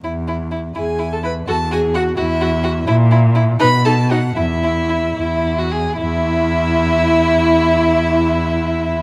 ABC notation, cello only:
X:1
M:6/8
L:1/8
Q:3/8=79
K:E
V:1 name="Cello" clef=bass
E,,3 E,,3 | E,,3 E,,3 | ^A,,3 B,,3 | E,,3 E,,3 |
E,,6- | E,,6 |]